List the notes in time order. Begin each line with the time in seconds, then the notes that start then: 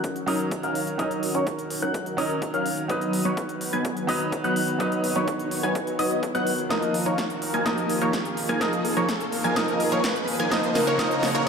Already playing: D#3 F#3 C#4 D#4 F#4 A#4 F#5 F#6, riser
0.04 kick, closed hi-hat
0.16 closed hi-hat
0.26 F#3 C#4 D#4 A#4 D#5 D#6, open hi-hat
0.40 closed hi-hat
0.51 kick, closed hi-hat
0.63 F#3 C#4 D#4 A#4 F5 F6, closed hi-hat
0.75 open hi-hat
0.87 closed hi-hat
0.98 F#3 C#4 D#4 A#4 D#5 D#6, kick, closed hi-hat
1.11 closed hi-hat
1.23 open hi-hat
1.35 F#3 C#4 D#4 A#4 C#5 C#6, closed hi-hat
1.47 kick, closed hi-hat
1.59 closed hi-hat
1.70 open hi-hat
1.82 F#3 C#4 D#4 A#4 F#5 F#6, closed hi-hat
1.94 kick, closed hi-hat
2.06 closed hi-hat
2.17 F#3 C#4 D#4 A#4 D#5 D#6, open hi-hat
2.30 closed hi-hat
2.42 kick, closed hi-hat
2.54 F#3 C#4 D#4 A#4 F5 F6, closed hi-hat
2.66 open hi-hat
2.78 closed hi-hat
2.88 F#3 B3 D#4 F#4 B4 D#5 D#6, kick, closed hi-hat
3.01 closed hi-hat
3.13 open hi-hat
3.25 F#3 B3 D#4 B4 C#5 C#6, closed hi-hat
3.37 kick, closed hi-hat
3.49 closed hi-hat
3.61 open hi-hat
3.73 F#3 B3 D#4 B4 G#5 G#6, closed hi-hat
3.85 kick, closed hi-hat
3.97 closed hi-hat
4.07 F#3 B3 D#4 B4 D#5 D#6, open hi-hat
4.20 closed hi-hat
4.32 kick, closed hi-hat
4.44 F#3 B3 D#4 B4 F#5 F#6, closed hi-hat
4.56 open hi-hat
4.68 closed hi-hat
4.79 F#3 B3 D#4 B4 C#5 D#5 D#6, kick, closed hi-hat
4.92 closed hi-hat
5.04 open hi-hat
5.16 F#3 B3 D#4 B4 C#5 C#6, closed hi-hat
5.28 kick, closed hi-hat
5.39 closed hi-hat
5.51 open hi-hat
5.63 F#3 B3 D#4 B4 G#5 G#6, closed hi-hat
5.75 kick, closed hi-hat
5.87 closed hi-hat
5.99 F#3 B3 D#4 B4 D#5 D#6, open hi-hat
6.11 closed hi-hat
6.23 kick, closed hi-hat
6.35 F#3 B3 D#4 B4 F#5 F#6, closed hi-hat
6.47 open hi-hat
6.59 closed hi-hat
6.69 F3 A#3 D#4 F4 A#4 D#5 D#6, kick, snare, closed hi-hat
6.82 closed hi-hat
6.94 open hi-hat
7.06 F3 A#3 D#4 A#4 C#5 C#6, closed hi-hat
7.18 kick, snare, closed hi-hat
7.30 closed hi-hat
7.42 open hi-hat
7.54 F3 A#3 D#4 A#4 G#5 G#6, closed hi-hat
7.65 F3 A#3 D#4 A#4 D#5 D#6, kick, snare, closed hi-hat
7.78 closed hi-hat
7.90 open hi-hat
8.01 F3 A#3 D#4 A#4 C#5 C#6, closed hi-hat
8.13 kick, snare, closed hi-hat
8.25 closed hi-hat
8.37 open hi-hat
8.49 F3 A#3 D#4 A#4 G#5 G#6, closed hi-hat
8.60 F3 A#3 D#4 G#4 A#4 D#5 D#6, kick, snare, closed hi-hat
8.73 closed hi-hat
8.85 open hi-hat
8.97 F3 A#3 D#4 A#4 C#5 C#6, closed hi-hat
9.09 kick, snare, closed hi-hat
9.20 closed hi-hat
9.32 open hi-hat
9.44 F3 A#3 D#4 A#4 G#5 G#6, closed hi-hat
9.55 F3 A#3 D#4 A#4 D#5 D#6, kick, snare, closed hi-hat
9.68 closed hi-hat
9.80 open hi-hat
9.92 F3 A#3 D#4 A#4 C#5 C#6, closed hi-hat
10.04 kick, snare, closed hi-hat
10.16 closed hi-hat
10.28 open hi-hat
10.40 F3 A#3 D#4 A#4 G#5 G#6, closed hi-hat
10.50 C#3 F3 A#3 D#4 A#4 D#5 F#5 D#6, kick, snare, closed hi-hat
10.63 closed hi-hat
10.75 snare, open hi-hat
10.87 F3 A#3 D#4 A#4 C#5 C#6
10.98 F3 A#3 D#4 A#4 D#5 D#6, kick, snare, closed hi-hat
11.11 closed hi-hat
11.23 snare, open hi-hat
11.35 F3 A#3 D#4 A#4 C#5 C#6, closed hi-hat
11.45 F3